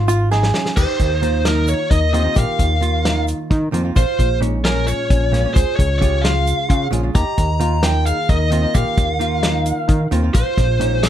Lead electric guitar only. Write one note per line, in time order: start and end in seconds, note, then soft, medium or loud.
0.76 1.47 C5 medium
1.46 1.67 A#4 medium
1.69 1.91 C#5 medium
1.91 2.13 D#5 medium
2.14 2.37 D#5 medium
2.38 3.24 F5 loud
3.97 4.38 C5 loud
4.65 4.88 A#4 medium
4.87 5.54 C#5 medium
5.54 5.76 C5 medium
5.76 5.98 C#5 medium
5.99 6.23 C#5 medium
6.22 6.87 F5 medium
7.15 7.85 A#5 loud
7.84 8.06 G5 medium
8.06 8.30 F5 medium
8.29 8.76 D#5 medium
8.74 10.07 F5 medium
10.35 11.05 C5 medium
11.03 11.09 A#4 medium